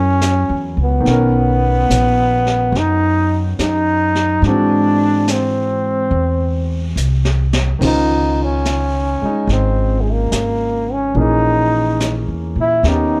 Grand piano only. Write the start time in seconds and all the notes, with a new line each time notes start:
Already playing: F#3 C#4 E4 A#4
1.01 D#3 B3
1.08 C#4 A#4
4.46 E3 G#3 C4 F#4
7.79 C#3 D#3 C5
7.84 F4
9.22 G#3 D#4
11.15 E3 A#3 C#4 G#4
12.84 D#3 B3 C#4
12.89 G4